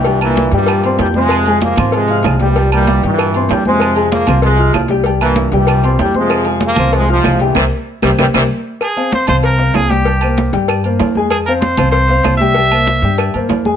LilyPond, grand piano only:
\new Staff \with { instrumentName = "Grand piano" } { \time 4/4 \key f \minor \tempo 4 = 192 <g g' g''>8 <bes bes' bes''>4 <g g' g''>4 <c' c'' c'''>8 <g' g'' g'''>8 <c' c'' c'''>8~ | <c' c'' c'''>8 <aes aes' aes''>4 <c' c'' c'''>4 <f' f'' f'''>4 <g g' g''>8 | <g g' g''>8 <bes bes' bes''>4 <g g' g''>4 <c' c'' c'''>8 <g' g'' g'''>8 <c' c'' c'''>8~ | <c' c'' c'''>8 <aes aes' aes''>4 <c' c'' c'''>4 <f' f'' f'''>4 <g g' g''>8 |
<g g' g''>8 <bes bes' bes''>4 <g g' g''>4 <c' c'' c'''>8 <g' g'' g'''>8 <c' c'' c'''>8~ | <c' c'' c'''>8 <aes aes' aes''>4 <c' c'' c'''>4 <f' f'' f'''>4 <g g' g''>8 | <g' bes' c''>8 r4 <g' bes' c''>8 <g' bes' c''>8 <g' bes' c''>8 r4 | r8 <c' c'' f''>4 <c' c'' f''>4 <c' c'' f''>4 <g g' g''>8 |
<g g' g''>8 <bes bes' c''>4 <g g' g''>4 <bes bes' c''>4 <aes aes' aes''>8~ | <aes aes' aes''>8 <c' c'' f''>4 <c' c'' f''>4 <c' c'' f''>4 <g g' g''>8 | <g g' g''>8 <bes bes' c''>4 <g g' g''>4 <bes bes' c''>4 <aes aes' aes''>8 | }